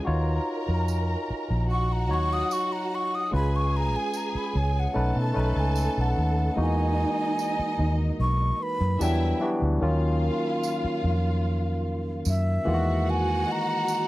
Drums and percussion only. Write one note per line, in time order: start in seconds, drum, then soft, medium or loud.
0.88 tambourine medium
2.51 tambourine medium
4.14 tambourine medium
5.76 tambourine medium
7.39 tambourine medium
9.01 tambourine loud
10.63 tambourine medium
12.25 tambourine loud
13.88 tambourine medium